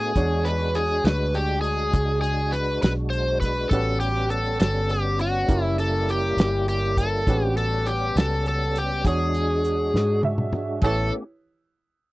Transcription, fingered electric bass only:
0.00 0.14 A2 medium
0.16 1.03 E2 medium
1.04 1.91 D2 medium
1.94 2.80 C#2 medium
2.83 3.69 B1 medium
3.71 4.57 A1 medium
4.60 5.47 G1 medium
5.48 6.35 F#1 medium
6.37 7.24 G1 medium
7.27 8.13 A1 medium
8.16 9.02 C#2 medium
9.05 9.91 E2 medium
9.94 10.80 G#2 medium
10.82 11.10 A1 medium

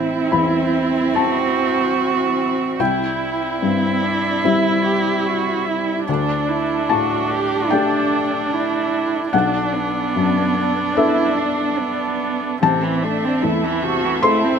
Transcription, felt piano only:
0.00 2.76 A1 soft
0.32 1.65 E2 soft
0.32 1.11 B5 medium
1.14 2.75 C4 soft
1.14 2.76 E4 soft
1.14 2.76 C5 soft
1.14 2.76 A5 medium
2.80 6.04 C2 soft
2.80 4.40 G5 medium
3.62 4.93 G2 soft
4.44 6.05 G3 soft
4.44 6.04 C4 soft
4.44 6.04 E4 soft
4.44 6.05 E5 soft
6.09 9.30 D2 soft
6.89 8.20 A2 soft
6.89 7.67 A5 medium
7.70 9.30 A3 soft
7.70 9.30 D4 soft
7.70 9.30 G4 soft
7.70 9.29 G5 medium
9.33 12.58 B1 soft
9.33 10.92 F#5 medium
10.16 11.46 F#2 soft
10.97 12.58 B3 soft
10.97 12.58 D4 soft
10.97 12.59 A4 soft
10.97 12.58 E5 medium
12.62 14.59 A1 soft
12.62 14.20 A5 medium
13.43 14.59 E2 soft
14.23 14.59 C4 soft
14.23 14.59 E4 soft
14.23 14.59 A4 soft
14.23 14.59 C6 medium

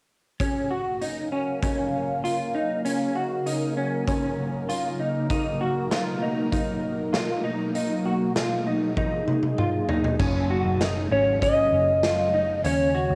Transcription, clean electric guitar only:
0.40 0.71 C#4 medium
0.71 1.01 F#4 medium
1.02 1.32 D#4 medium
1.32 1.62 C#4 medium
1.63 2.24 C#4 medium
2.24 2.54 F4 medium
2.55 2.85 D#4 medium
2.85 3.16 C#4 medium
3.15 3.46 F#4 medium
3.46 3.77 D#4 medium
3.77 4.06 C#4 medium
4.07 4.69 C#4 medium
4.69 4.99 F4 medium
5.00 5.29 D#4 medium
5.30 5.61 D#4 medium
5.61 5.91 F#4 medium
5.91 6.22 F4 medium
6.22 6.51 D#4 medium
6.52 7.13 D#4 medium
7.13 7.44 F4 medium
7.44 7.74 D#4 medium
7.75 8.06 D#4 medium
8.06 8.36 F#4 medium
8.36 8.67 F4 medium
8.67 8.96 D#4 medium
8.97 9.59 D#4 medium
9.58 9.89 F4 medium
9.89 10.19 D#4 medium
10.19 10.50 C#4 medium
10.50 10.81 F#4 medium
10.81 11.11 D#4 medium
11.12 11.40 C#4 medium
11.41 12.03 C#4 medium
12.03 12.34 F4 medium
12.34 12.64 D#4 medium
12.64 12.95 C#4 medium
12.95 13.15 F#4 medium

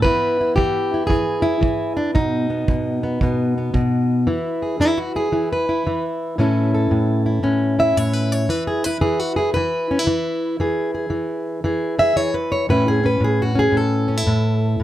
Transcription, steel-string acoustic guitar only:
0.02 0.56 E3 medium
0.02 2.50 B3 soft
0.02 0.40 E4 medium
0.02 0.55 B4 medium
0.41 0.93 E4 soft
0.56 1.08 E3 medium
0.56 1.06 G4 medium
0.94 1.41 E4 soft
1.07 1.60 E3 medium
1.07 1.96 G#4 medium
1.42 1.96 E4 medium
1.61 2.15 E3 medium
1.97 2.14 D4 medium
2.15 2.67 B2 medium
2.15 4.27 D#4 medium
2.50 3.02 B3 soft
2.68 3.21 B2 medium
3.03 3.22 B3 soft
3.22 3.73 B2 medium
3.22 3.57 B3 soft
3.58 4.26 B3 soft
3.74 4.27 B2 medium
4.27 4.79 E3 medium
4.27 4.80 E4 soft
4.62 4.97 G#4 soft
4.80 5.32 E3 medium
4.80 4.98 E4 medium
4.98 5.15 F#4 medium
5.16 5.32 E4 soft
5.16 5.51 G#4 medium
5.32 5.86 E3 medium
5.32 5.69 E4 soft
5.53 6.04 B4 medium
5.69 6.40 E4 soft
5.87 6.38 E3 medium
6.38 6.90 A2 medium
6.38 8.49 E3 soft
6.38 7.42 C#4 soft
6.38 7.26 E4 medium
6.38 6.73 A4 medium
6.74 7.97 A4 soft
6.91 7.42 A2 medium
7.26 7.79 E4 soft
7.43 7.96 A2 medium
7.43 8.47 C#4 soft
7.79 8.86 E4 soft
7.79 7.97 E5 medium
7.97 8.47 A2 medium
7.97 8.13 C#5 medium
8.13 8.32 B4 medium
8.32 8.50 C#5 medium
8.49 9.01 E3 medium
8.49 8.67 B4 medium
8.67 8.84 G#4 medium
8.84 9.38 E4 soft
8.84 9.01 B4 medium
9.01 9.56 E3 medium
9.01 9.20 G#4 medium
9.20 9.36 F#4 medium
9.36 9.91 E4 soft
9.36 9.54 G#4 medium
9.54 10.07 E3 medium
9.54 11.12 B4 loud
9.91 9.99 C#4 soft
9.99 10.60 E4 soft
10.07 10.59 E3 medium
10.60 11.10 E3 medium
10.60 10.93 G#4 medium
10.95 11.64 G#4 soft
11.10 11.64 E3 medium
11.64 12.16 E3 medium
11.64 11.97 G#4 medium
11.99 12.34 G#4 soft
11.99 12.17 E5 loud
12.16 12.70 E3 medium
12.16 12.34 C#5 medium
12.34 12.52 B4 medium
12.52 12.69 C#5 medium
12.69 13.20 A2 medium
12.69 14.83 E3 soft
12.69 13.03 C#4 medium
12.69 12.88 E4 medium
12.69 12.87 B4 medium
12.88 13.05 G#4 medium
13.03 13.55 C#4 soft
13.03 13.22 B4 medium
13.20 13.72 A2 medium
13.24 13.41 G#4 medium
13.42 13.58 F#4 medium
13.55 14.07 C#4 soft
13.55 13.75 G#4 medium
13.72 14.25 A2 medium
13.77 14.83 A4 medium
14.08 14.17 C#4 soft
14.17 14.79 E4 soft
14.27 14.77 A2 medium
14.80 14.83 A2 medium

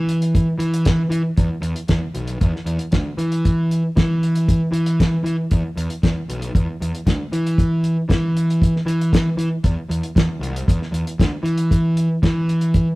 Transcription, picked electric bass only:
0.00 0.46 E3 medium
0.58 1.02 E3 medium
1.10 1.21 E3 medium
1.38 1.48 E2 medium
1.61 1.73 E2 medium
1.89 1.99 E2 medium
2.14 2.36 B1 medium
2.40 2.51 E2 medium
2.65 2.77 E2 medium
2.92 3.03 D2 medium
3.17 3.82 E3 medium
3.96 4.60 E3 medium
4.72 5.15 E3 medium
5.24 5.35 E3 medium
5.51 5.62 E2 medium
5.77 5.87 E2 medium
6.03 6.13 E2 medium
6.29 6.50 B1 medium
6.55 6.65 E2 medium
6.81 6.91 E2 medium
7.06 7.17 D2 medium
7.32 7.96 E3 medium
8.09 8.72 E3 medium
8.86 9.28 E3 medium
9.37 9.48 E3 medium
9.64 9.74 E2 loud
9.89 10.00 E2 medium
10.16 10.26 E2 medium
10.40 10.62 C2 medium
10.68 10.78 E2 medium
10.92 11.03 E2 medium
11.19 11.29 D2 medium
11.43 12.07 E3 medium
12.23 12.86 E3 medium

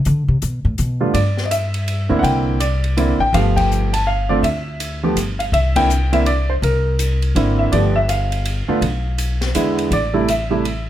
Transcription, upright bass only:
0.06 0.28 D3 loud
0.28 0.41 C3 medium
0.43 0.64 B2 medium
0.65 0.78 A2 medium
0.79 1.06 B2 medium
1.14 2.06 G2 medium
2.10 2.22 D2 medium
2.23 3.15 C2 medium
3.19 3.32 A1 medium
3.33 4.39 G1 medium
4.43 5.12 D2 medium
5.16 5.50 G1 medium
5.52 6.58 C2 medium
6.62 7.32 C2 medium
7.35 7.69 G#1 medium
7.73 8.65 G1 medium
8.69 muted upright bass stroke soft
8.81 9.51 B1 medium
9.55 9.89 E2 medium
9.91 10.90 A1 medium

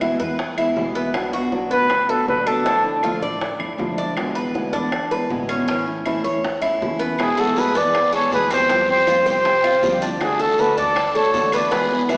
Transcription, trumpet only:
1.72 2.11 B4 loud
2.10 2.28 A4 medium
2.28 2.49 B4 medium
2.47 3.23 A4 medium
7.21 7.41 G#4 medium
7.39 7.61 A4 medium
7.59 7.79 B4 medium
7.77 8.14 D5 loud
8.15 8.32 C#5 medium
8.34 8.51 B4 loud
8.53 8.87 C5 medium
8.91 9.25 C5 loud
9.29 9.99 C5 loud
10.23 10.43 G#4 medium
10.41 10.62 A4 medium
10.60 10.77 B4 medium
10.78 11.18 D5 medium
11.16 11.53 C#5 loud
11.55 11.74 D5 medium
11.73 12.10 B4 medium
12.12 12.17 B4 medium

